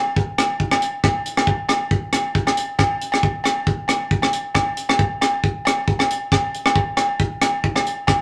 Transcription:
0.16 kick
0.38 cross-stick, closed hi-hat, low agogo
0.60 kick
0.71 cross-stick, low agogo
0.82 closed hi-hat
1.04 kick, cross-stick, low agogo
1.26 closed hi-hat
1.37 cross-stick, low agogo
1.47 kick
1.69 cross-stick, closed hi-hat, low agogo
1.91 kick
2.13 cross-stick, closed hi-hat, low agogo
2.35 kick
2.47 cross-stick, low agogo
2.57 closed hi-hat
2.79 kick, cross-stick, low agogo
3.01 closed hi-hat
3.12 cross-stick, low agogo
3.23 kick
3.44 cross-stick, closed hi-hat, low agogo
3.67 kick
3.88 cross-stick, closed hi-hat, low agogo
4.11 kick
4.22 cross-stick, low agogo
4.33 closed hi-hat
4.55 kick, cross-stick, low agogo
4.77 closed hi-hat
4.89 cross-stick, low agogo
4.99 kick
5.21 cross-stick, closed hi-hat, low agogo
5.44 kick
5.65 cross-stick, closed hi-hat, low agogo
5.88 kick
5.99 cross-stick, low agogo
6.10 closed hi-hat
6.32 kick, cross-stick, low agogo
6.54 closed hi-hat
6.66 cross-stick, low agogo
6.76 kick
6.97 cross-stick, closed hi-hat, low agogo
7.20 kick
7.42 cross-stick, closed hi-hat, low agogo
7.64 kick
7.76 cross-stick, low agogo
7.86 closed hi-hat
8.07 kick, cross-stick, low agogo

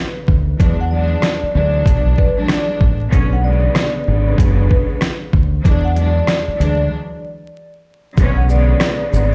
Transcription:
Already playing: C#3 D3 G#3 B3
0.28 D2, kick
0.59 E2 E3 F#3 G#3 D4, kick, closed hi-hat
0.81 F#5
0.91 E3 F#3 G#3 D4 D5
1.22 cross-stick, snare, closed hi-hat
1.43 muted fingered electric bass stroke
1.54 D2 E3 F#3 G#3 D4
1.86 B1, kick, closed hi-hat
2.18 B4, kick
2.35 E3 F#3 G#3 D4
2.48 cross-stick, snare, closed hi-hat
2.81 A1, kick
3.09 B1 D3 G#3 B3 C#4, kick, closed hi-hat
3.33 F#5
3.41 C#3 D3 G#3 B3 D5
3.75 cross-stick, snare, closed hi-hat
4.07 G#1 C#3 D3 G#3 B3
4.38 F#1, kick, closed hi-hat
4.70 B4, kick
5.01 cross-stick, snare, closed hi-hat
5.33 D2, kick
5.63 E2 E3 F#3 G#3 D4, kick, closed hi-hat
5.85 F#5
5.95 E3 F#3 G#3 D4 D5, closed hi-hat
6.27 cross-stick, snare, closed hi-hat
6.48 muted fingered electric bass stroke
6.58 D2 E3 F#3 G#3 D4, closed hi-hat
8.17 B1 D3 G#3 B3 C#4, kick, closed hi-hat, shaker
8.37 F#5
8.48 C#3 D3 G#3 B3 D5, shaker
8.80 cross-stick, snare, closed hi-hat, shaker
9.10 G#1 C#3 D3 G#3 B3, shaker

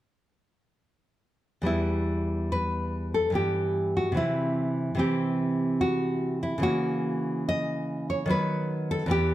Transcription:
1.62 E2 G3 B3
1.66 E4
2.52 B4
3.14 A4
3.30 G2 E3 B3
3.35 G4
3.97 F#4
4.12 C3 E3 C4
4.17 E4
4.95 C3 E3 C4
4.99 G4
5.81 F#4
6.43 E4
6.58 C#3 E3
6.62 A#3 F#4
7.49 D#5
8.10 C#5
8.26 D#3 F#3 B3
8.30 B4
8.91 A4
9.06 E2 E3 B3
9.11 G4

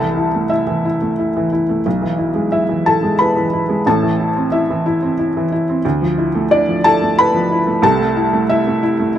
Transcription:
Already playing: C2 A4 A5
0.00 E3
0.17 E4
0.34 A3
0.50 E4 E5
0.67 E3
0.85 E4
1.02 A3
1.19 E4
1.37 E3
1.52 E4
1.69 A3
1.86 B1
2.02 E3
2.18 E4
2.34 G#3
2.52 E4 E5
2.69 E3
2.86 E4 A4 A5
3.03 G#3
3.19 E4 B4 B5
3.37 E3
3.53 E4
3.69 G#3
3.86 A1 A2 A4 A5
4.03 E3
4.20 E4
4.36 C4
4.52 E4 E5
4.70 E3
4.86 E4
5.03 C4
5.19 E4
5.37 E3
5.52 E4
5.69 C4
5.85 D2
6.02 F3
6.18 E4
6.35 A3
6.51 D4 E4 D5
6.68 F3
6.84 E4 A4 A5
7.02 A3
7.19 E4 B4 B5
7.34 F3
7.52 E4
7.67 A3
7.82 C2 C3 A4 A5
8.00 A3
8.17 E4
8.33 A3
8.49 E4 E5
8.67 A3
8.83 E4
9.00 A3
9.15 E4

